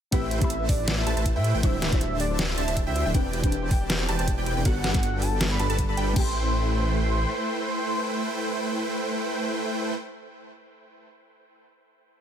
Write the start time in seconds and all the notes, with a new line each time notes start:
0.11 A1 A3 C4 E4 G4 B4 C5 E5 G5, kick, closed hi-hat, ride
0.23 B4
0.31 G4, closed hi-hat
0.39 A1 A3 C4 E4 G4 B4 C5 E5 A5 B5, kick, closed hi-hat
0.50 G4, closed hi-hat
0.60 B4
0.69 G4 D5, kick, open hi-hat
0.79 B4
0.88 G4, snare, closed hi-hat
0.98 C5 E5
1.06 A1 A3 E4 G4 B4 C5 A5, closed hi-hat
1.17 A1 A3 E4 B4 C5 A5, closed hi-hat
1.25 G4, kick, closed hi-hat
1.35 A2 A3 E4 B4 C5 E5 G5
1.44 G4, closed hi-hat
1.55 A1 A3 E4 B4 C5 G5
1.62 D1 D3 G3 D4 E4 G4 C5 E5 G5, kick, closed hi-hat, ride
1.73 C5
1.82 G4, snare, closed hi-hat
1.90 D1 D3 G3 D4 E4 C5 E5 A5, kick, closed hi-hat
2.01 G4, closed hi-hat
2.11 D5
2.20 G4 D5, open hi-hat
2.30 C5
2.39 G4, snare, closed hi-hat
2.49 C5 E5
2.57 D1 D3 D4 G4 C5 E5 A5, closed hi-hat
2.68 D1 D3 D4 C5 D5 E5 A5, closed hi-hat
2.77 G4, kick, closed hi-hat
2.87 D2 D3 D4 C5 E5 G5
2.96 G4, closed hi-hat
3.06 D1 D3 D4 C5 E5 G5
3.13 E1 E3 C4 D4 G4 B4 D5 G5, kick, closed hi-hat, ride
3.25 D5
3.33 G4, closed hi-hat
3.42 E1 E3 C4 D4 B4 C5 D5 G5 A5, kick, closed hi-hat
3.52 G4, closed hi-hat
3.62 C5
3.71 G4 G5, kick, open hi-hat
3.81 D5
3.90 G4, snare, closed hi-hat
4.00 C5 G5
4.09 E1 E3 C4 G4 B4 D5 A5, closed hi-hat
4.19 E1 E3 C4 B4 C5 D5 A5, closed hi-hat
4.28 G4, kick, closed hi-hat
4.38 E1 E3 C4 B4 D5 G5
4.46 G4, closed hi-hat
4.57 E1 E3 C4 B4 C5 D5 G5
4.64 G1 G3 B3 D4 F#4 A4 B4 F#5, kick, closed hi-hat, ride
4.76 A4
4.84 F#4, snare, closed hi-hat
4.92 G1 G3 B3 D4 A4 B4 F#5 G5, kick, closed hi-hat
4.97 A4
5.03 F#4, closed hi-hat
5.13 A4
5.22 F#4 A5, open hi-hat
5.32 A4
5.41 F#4, snare, closed hi-hat
5.51 B4 B5
5.59 G1 G3 D4 F#4 A4 B4 A5, closed hi-hat
5.70 G1 G3 D4 A4 B4 A5, closed hi-hat
5.78 F#4, kick, closed hi-hat
5.89 G1 G3 D4 A4 B4 A5 B5
5.97 G1 G3 D4 F#4 A4 B4 G5, closed hi-hat
6.08 B4
6.13 A1 A3 C4 E4 G4 B4 C5 G5 C6, kick, crash
6.17 G4 G5